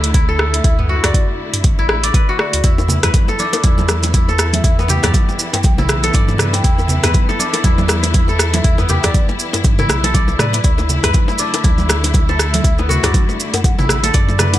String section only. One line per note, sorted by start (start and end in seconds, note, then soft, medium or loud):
0.00 2.60 D3 medium
0.00 2.60 A3 medium
0.00 2.60 E4 medium
2.64 10.60 E3 medium
2.64 10.60 B3 medium
2.64 14.59 E4 medium
10.64 14.59 D3 medium
10.64 14.59 A3 medium